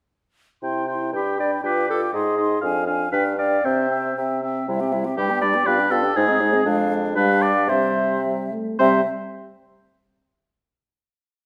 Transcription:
0.62 C3 E4 G5 C6
0.88 E4 G5 C6
1.13 G2 D4 G4 G5 B5
1.39 D4 D5 G5 B5
1.64 G2 F4 B4 G5 D6
1.88 F4 A4 G5 D6
2.13 G#2 D#4 G#4 D#5 C6
2.38 D#4 D#5 C6
2.61 F2 D4 F5 G#5
2.87 D4 F5 G#5
3.11 G2 D4 B4 F5 G5
3.38 D4 D5 F5 G5
3.64 C3 C4 C5 E5 G5
3.90 C4 E5 G5
4.16 C3 C4 E5 G5
4.43 C4 E5 G5
4.68 C3 G3 E4 E5
4.80 C4 G4 G5
4.92 G3 E4 E5
5.04 C4 G4 G5
5.17 G2 G3 D4 G4 B5
5.30 B3 G4 G5
5.42 G3 D4 D5 B5
5.54 B3 G4 G5
5.66 G2 B3 F4 B4 F5
5.79 D4 G4 G5
5.91 B3 F4 A4 F5
6.04 D4 G4 G5
6.16 G#2 G#3 D#4 G#4 C5
6.28 C4 G#4 D#5
6.40 G#3 D#4 C5
6.53 C4 G#4 D#5
6.65 F2 G#3 D4 F5
7.16 G2 G3 D4 B4 F5
7.42 D5
7.69 C3 G3 C4 C5 E5
8.24 G3
8.52 A3
8.79 C3 G3 C4 C5 E5

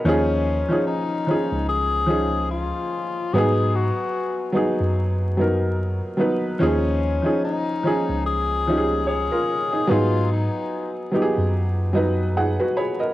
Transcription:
Already playing: A#4 D#5
0.05 D#2 F3 C#4 D#4 G#4
0.69 F3 C#4 D#4 G#4
0.87 D#4
1.27 F3 C#4 D#4 G#4
1.52 C#2
1.69 G#4
2.06 F3 C#4 D#4 G#4
2.51 F4
3.33 G#2 F#3 B3 D#4 G#4
3.38 G#4
3.75 F#4
4.52 F#3 B3 D#4
4.56 G#4
4.80 F#2
5.37 F#3 B3 D#4
5.41 A#4
6.17 F#3 B3 D#4 B4
6.59 D#2 F3 C#4 D#4 G#4
7.22 F3 C#4 D#4 G#4
7.45 D#4
7.83 F3 C#4 D#4 G#4
8.09 C#2
8.26 G#4
8.67 F3 C#4 D#4 G4
8.77 G#4
9.07 G#4 C#5
9.32 F4 A#4
9.73 D#4 G#4
9.87 G#2 F#3 B3 D#4 F4 G#4
10.32 D#4
11.11 F#3 B3 D#4 G4
11.22 G#4
11.38 F#2
11.93 F#3 B3 D#4 B4 D#5
12.37 D#4 G#4 F#5
12.60 F#4 B4
12.77 G#4 C#5 B5
13.00 A#4 D#5

